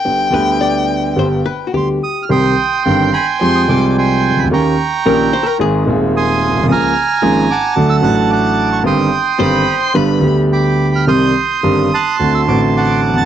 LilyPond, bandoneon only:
\new Staff \with { instrumentName = "Bandoneon" } { \time 4/4 \key c \minor \tempo 4 = 109 << { r2. c'''8 ees'''16. f'''32 | ees'''4 r8 c'''8. ees'''16 d'''16. d'''32 c'''8. b''16 | des'''2 r4 ees'''4 | f'''4 r8 d'''8. e'''16 fis'''8 d'''8. des'''16 |
ees'''2 r4 d'''8. f'''16 | g'''4 r8 fis'''8. e'''16 d'''8 d'''8. a'''16 | } \\ { r1 | <g'' c'''>4. <g'' aes''>4. <g'' aes''>4 | <g'' bes''>2 r4 <aes'' c'''>4 | <aes'' bes''>4. <fis'' a''>4. <fis'' a''>4 |
<g'' c'''>2 r4 <g'' b''>4 | <c''' ees'''>4. <a'' c'''>4. <fis'' a''>4 | } >> }